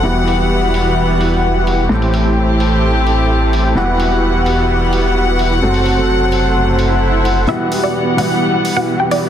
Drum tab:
HH |--o---o---o---o-|-oo---o---o---o-|--o---o---o---o-|-oo---o---o---o-|

HH |--o---o---o---o-|